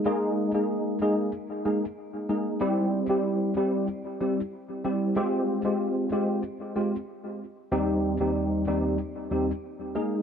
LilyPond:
\new Staff \with { instrumentName = "Tine electric piano" } { \time 4/4 \key c \phrygian \tempo 4 = 94 <aes bes ees' aes'>8. <aes bes ees' aes'>8. <aes bes ees' aes'>8 r8 <aes bes ees' aes'>16 r8. <aes bes ees' aes'>8 | <g c' e' g'>8. <g c' e' g'>8. <g c' e' g'>8 r8 <g c' e' g'>16 r8. <g c' e' g'>8 | <aes c' f' g'>8. <aes c' f' g'>8. <aes c' f' g'>8 r8 <aes c' f' g'>16 r4 r16 | <ees, g c' ees' g'>8. <ees, g c' ees' g'>8. <ees, g c' ees' g'>8 r8 <ees, g c' ees' g'>16 r8. <aes bes ees' aes'>8 | }